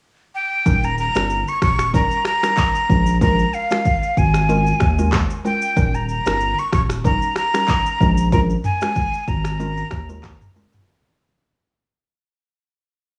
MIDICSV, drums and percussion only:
0, 0, Header, 1, 2, 480
1, 0, Start_track
1, 0, Tempo, 638298
1, 498, Time_signature, 4, 2, 24, 8
1, 9916, End_track
2, 0, Start_track
2, 0, Title_t, "Drums"
2, 497, Note_on_c, 9, 36, 119
2, 497, Note_on_c, 9, 82, 76
2, 572, Note_off_c, 9, 36, 0
2, 572, Note_off_c, 9, 82, 0
2, 628, Note_on_c, 9, 82, 54
2, 703, Note_off_c, 9, 82, 0
2, 737, Note_on_c, 9, 82, 51
2, 812, Note_off_c, 9, 82, 0
2, 866, Note_on_c, 9, 82, 84
2, 875, Note_on_c, 9, 37, 116
2, 878, Note_on_c, 9, 26, 94
2, 941, Note_off_c, 9, 82, 0
2, 950, Note_off_c, 9, 37, 0
2, 953, Note_off_c, 9, 26, 0
2, 975, Note_on_c, 9, 82, 62
2, 1050, Note_off_c, 9, 82, 0
2, 1110, Note_on_c, 9, 82, 56
2, 1185, Note_off_c, 9, 82, 0
2, 1215, Note_on_c, 9, 37, 98
2, 1216, Note_on_c, 9, 36, 102
2, 1216, Note_on_c, 9, 82, 55
2, 1219, Note_on_c, 9, 26, 78
2, 1291, Note_off_c, 9, 37, 0
2, 1292, Note_off_c, 9, 36, 0
2, 1292, Note_off_c, 9, 82, 0
2, 1294, Note_off_c, 9, 26, 0
2, 1343, Note_on_c, 9, 37, 95
2, 1346, Note_on_c, 9, 26, 77
2, 1349, Note_on_c, 9, 82, 86
2, 1418, Note_off_c, 9, 37, 0
2, 1421, Note_off_c, 9, 26, 0
2, 1424, Note_off_c, 9, 82, 0
2, 1458, Note_on_c, 9, 36, 86
2, 1459, Note_on_c, 9, 82, 64
2, 1533, Note_off_c, 9, 36, 0
2, 1534, Note_off_c, 9, 82, 0
2, 1587, Note_on_c, 9, 82, 54
2, 1662, Note_off_c, 9, 82, 0
2, 1689, Note_on_c, 9, 37, 99
2, 1693, Note_on_c, 9, 26, 82
2, 1698, Note_on_c, 9, 82, 52
2, 1764, Note_off_c, 9, 37, 0
2, 1768, Note_off_c, 9, 26, 0
2, 1773, Note_off_c, 9, 82, 0
2, 1828, Note_on_c, 9, 37, 100
2, 1828, Note_on_c, 9, 82, 94
2, 1831, Note_on_c, 9, 26, 78
2, 1903, Note_off_c, 9, 37, 0
2, 1903, Note_off_c, 9, 82, 0
2, 1906, Note_off_c, 9, 26, 0
2, 1931, Note_on_c, 9, 82, 77
2, 1933, Note_on_c, 9, 39, 105
2, 1935, Note_on_c, 9, 36, 97
2, 2006, Note_off_c, 9, 82, 0
2, 2008, Note_off_c, 9, 39, 0
2, 2011, Note_off_c, 9, 36, 0
2, 2067, Note_on_c, 9, 82, 64
2, 2142, Note_off_c, 9, 82, 0
2, 2177, Note_on_c, 9, 36, 95
2, 2181, Note_on_c, 9, 82, 51
2, 2252, Note_off_c, 9, 36, 0
2, 2256, Note_off_c, 9, 82, 0
2, 2303, Note_on_c, 9, 82, 94
2, 2378, Note_off_c, 9, 82, 0
2, 2416, Note_on_c, 9, 82, 77
2, 2417, Note_on_c, 9, 36, 117
2, 2492, Note_off_c, 9, 36, 0
2, 2492, Note_off_c, 9, 82, 0
2, 2549, Note_on_c, 9, 82, 56
2, 2624, Note_off_c, 9, 82, 0
2, 2658, Note_on_c, 9, 82, 52
2, 2733, Note_off_c, 9, 82, 0
2, 2787, Note_on_c, 9, 82, 82
2, 2795, Note_on_c, 9, 37, 117
2, 2799, Note_on_c, 9, 26, 93
2, 2862, Note_off_c, 9, 82, 0
2, 2871, Note_off_c, 9, 37, 0
2, 2874, Note_off_c, 9, 26, 0
2, 2895, Note_on_c, 9, 82, 61
2, 2898, Note_on_c, 9, 36, 99
2, 2971, Note_off_c, 9, 82, 0
2, 2973, Note_off_c, 9, 36, 0
2, 3030, Note_on_c, 9, 82, 54
2, 3106, Note_off_c, 9, 82, 0
2, 3137, Note_on_c, 9, 36, 104
2, 3138, Note_on_c, 9, 82, 55
2, 3213, Note_off_c, 9, 36, 0
2, 3213, Note_off_c, 9, 82, 0
2, 3264, Note_on_c, 9, 37, 91
2, 3267, Note_on_c, 9, 26, 75
2, 3270, Note_on_c, 9, 82, 83
2, 3339, Note_off_c, 9, 37, 0
2, 3342, Note_off_c, 9, 26, 0
2, 3345, Note_off_c, 9, 82, 0
2, 3379, Note_on_c, 9, 82, 62
2, 3454, Note_off_c, 9, 82, 0
2, 3508, Note_on_c, 9, 82, 56
2, 3583, Note_off_c, 9, 82, 0
2, 3610, Note_on_c, 9, 37, 102
2, 3613, Note_on_c, 9, 26, 77
2, 3618, Note_on_c, 9, 36, 92
2, 3618, Note_on_c, 9, 82, 54
2, 3685, Note_off_c, 9, 37, 0
2, 3688, Note_off_c, 9, 26, 0
2, 3693, Note_off_c, 9, 82, 0
2, 3694, Note_off_c, 9, 36, 0
2, 3750, Note_on_c, 9, 82, 94
2, 3825, Note_off_c, 9, 82, 0
2, 3852, Note_on_c, 9, 82, 83
2, 3854, Note_on_c, 9, 37, 108
2, 3854, Note_on_c, 9, 39, 103
2, 3857, Note_on_c, 9, 26, 83
2, 3857, Note_on_c, 9, 36, 97
2, 3927, Note_off_c, 9, 82, 0
2, 3929, Note_off_c, 9, 37, 0
2, 3929, Note_off_c, 9, 39, 0
2, 3932, Note_off_c, 9, 36, 0
2, 3933, Note_off_c, 9, 26, 0
2, 3989, Note_on_c, 9, 82, 64
2, 4064, Note_off_c, 9, 82, 0
2, 4103, Note_on_c, 9, 82, 53
2, 4179, Note_off_c, 9, 82, 0
2, 4225, Note_on_c, 9, 82, 97
2, 4301, Note_off_c, 9, 82, 0
2, 4338, Note_on_c, 9, 36, 122
2, 4338, Note_on_c, 9, 82, 75
2, 4413, Note_off_c, 9, 82, 0
2, 4414, Note_off_c, 9, 36, 0
2, 4470, Note_on_c, 9, 82, 55
2, 4545, Note_off_c, 9, 82, 0
2, 4578, Note_on_c, 9, 82, 52
2, 4653, Note_off_c, 9, 82, 0
2, 4707, Note_on_c, 9, 82, 81
2, 4716, Note_on_c, 9, 37, 121
2, 4719, Note_on_c, 9, 26, 97
2, 4782, Note_off_c, 9, 82, 0
2, 4791, Note_off_c, 9, 37, 0
2, 4794, Note_off_c, 9, 26, 0
2, 4816, Note_on_c, 9, 82, 63
2, 4891, Note_off_c, 9, 82, 0
2, 4952, Note_on_c, 9, 82, 54
2, 5027, Note_off_c, 9, 82, 0
2, 5058, Note_on_c, 9, 36, 101
2, 5058, Note_on_c, 9, 37, 99
2, 5059, Note_on_c, 9, 82, 55
2, 5061, Note_on_c, 9, 26, 76
2, 5133, Note_off_c, 9, 37, 0
2, 5134, Note_off_c, 9, 36, 0
2, 5134, Note_off_c, 9, 82, 0
2, 5136, Note_off_c, 9, 26, 0
2, 5185, Note_on_c, 9, 37, 92
2, 5188, Note_on_c, 9, 26, 78
2, 5191, Note_on_c, 9, 82, 84
2, 5260, Note_off_c, 9, 37, 0
2, 5263, Note_off_c, 9, 26, 0
2, 5266, Note_off_c, 9, 82, 0
2, 5300, Note_on_c, 9, 36, 88
2, 5300, Note_on_c, 9, 82, 64
2, 5375, Note_off_c, 9, 36, 0
2, 5375, Note_off_c, 9, 82, 0
2, 5428, Note_on_c, 9, 82, 57
2, 5503, Note_off_c, 9, 82, 0
2, 5531, Note_on_c, 9, 37, 99
2, 5534, Note_on_c, 9, 26, 80
2, 5539, Note_on_c, 9, 82, 53
2, 5606, Note_off_c, 9, 37, 0
2, 5609, Note_off_c, 9, 26, 0
2, 5614, Note_off_c, 9, 82, 0
2, 5671, Note_on_c, 9, 37, 98
2, 5671, Note_on_c, 9, 82, 91
2, 5674, Note_on_c, 9, 26, 83
2, 5746, Note_off_c, 9, 37, 0
2, 5746, Note_off_c, 9, 82, 0
2, 5749, Note_off_c, 9, 26, 0
2, 5774, Note_on_c, 9, 82, 78
2, 5775, Note_on_c, 9, 39, 106
2, 5778, Note_on_c, 9, 36, 93
2, 5849, Note_off_c, 9, 82, 0
2, 5851, Note_off_c, 9, 39, 0
2, 5853, Note_off_c, 9, 36, 0
2, 5911, Note_on_c, 9, 82, 66
2, 5986, Note_off_c, 9, 82, 0
2, 6019, Note_on_c, 9, 36, 98
2, 6025, Note_on_c, 9, 82, 52
2, 6094, Note_off_c, 9, 36, 0
2, 6100, Note_off_c, 9, 82, 0
2, 6145, Note_on_c, 9, 82, 93
2, 6220, Note_off_c, 9, 82, 0
2, 6258, Note_on_c, 9, 36, 121
2, 6258, Note_on_c, 9, 82, 77
2, 6333, Note_off_c, 9, 82, 0
2, 6334, Note_off_c, 9, 36, 0
2, 6390, Note_on_c, 9, 82, 56
2, 6466, Note_off_c, 9, 82, 0
2, 6498, Note_on_c, 9, 45, 63
2, 6498, Note_on_c, 9, 82, 50
2, 6573, Note_off_c, 9, 45, 0
2, 6573, Note_off_c, 9, 82, 0
2, 6626, Note_on_c, 9, 82, 83
2, 6635, Note_on_c, 9, 37, 121
2, 6638, Note_on_c, 9, 26, 95
2, 6702, Note_off_c, 9, 82, 0
2, 6710, Note_off_c, 9, 37, 0
2, 6714, Note_off_c, 9, 26, 0
2, 6734, Note_on_c, 9, 82, 62
2, 6738, Note_on_c, 9, 36, 96
2, 6810, Note_off_c, 9, 82, 0
2, 6813, Note_off_c, 9, 36, 0
2, 6869, Note_on_c, 9, 82, 54
2, 6945, Note_off_c, 9, 82, 0
2, 6976, Note_on_c, 9, 82, 56
2, 6977, Note_on_c, 9, 36, 104
2, 7052, Note_off_c, 9, 36, 0
2, 7052, Note_off_c, 9, 82, 0
2, 7102, Note_on_c, 9, 37, 92
2, 7106, Note_on_c, 9, 26, 72
2, 7109, Note_on_c, 9, 82, 84
2, 7177, Note_off_c, 9, 37, 0
2, 7181, Note_off_c, 9, 26, 0
2, 7184, Note_off_c, 9, 82, 0
2, 7218, Note_on_c, 9, 82, 62
2, 7294, Note_off_c, 9, 82, 0
2, 7348, Note_on_c, 9, 82, 54
2, 7423, Note_off_c, 9, 82, 0
2, 7450, Note_on_c, 9, 37, 101
2, 7453, Note_on_c, 9, 26, 81
2, 7458, Note_on_c, 9, 36, 92
2, 7458, Note_on_c, 9, 82, 53
2, 7525, Note_off_c, 9, 37, 0
2, 7528, Note_off_c, 9, 26, 0
2, 7534, Note_off_c, 9, 36, 0
2, 7534, Note_off_c, 9, 82, 0
2, 7589, Note_on_c, 9, 82, 93
2, 7665, Note_off_c, 9, 82, 0
2, 7694, Note_on_c, 9, 82, 82
2, 7696, Note_on_c, 9, 37, 104
2, 7696, Note_on_c, 9, 39, 104
2, 7697, Note_on_c, 9, 36, 90
2, 7699, Note_on_c, 9, 26, 80
2, 7769, Note_off_c, 9, 82, 0
2, 7771, Note_off_c, 9, 37, 0
2, 7771, Note_off_c, 9, 39, 0
2, 7772, Note_off_c, 9, 36, 0
2, 7774, Note_off_c, 9, 26, 0
2, 7830, Note_on_c, 9, 45, 83
2, 7830, Note_on_c, 9, 82, 64
2, 7905, Note_off_c, 9, 45, 0
2, 7905, Note_off_c, 9, 82, 0
2, 7944, Note_on_c, 9, 82, 51
2, 8019, Note_off_c, 9, 82, 0
2, 8065, Note_on_c, 9, 82, 98
2, 8074, Note_on_c, 9, 45, 96
2, 8140, Note_off_c, 9, 82, 0
2, 8149, Note_off_c, 9, 45, 0
2, 9916, End_track
0, 0, End_of_file